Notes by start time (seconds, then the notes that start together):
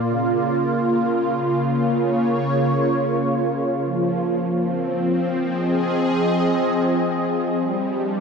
Already playing: A#3 F4
0.07 C#3
1.78 C#5
3.84 F3
4.61 C4
5.51 G#4 D#5
7.60 G3
7.90 D4